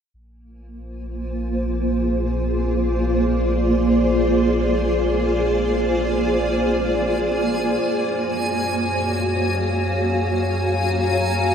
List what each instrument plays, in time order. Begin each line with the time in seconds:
0.14 sub bass A#1, ambient pad A#3, synth texture G#5
0.45 ambient pad F4
0.50 ambient pad C5
1.31 ambient pad G#4
2.64 ambient pad D5
7.84 sub bass F#2, ambient pad F#4
8.17 ambient pad C#5
8.63 ambient pad F5 G#5
10.22 ambient pad A#5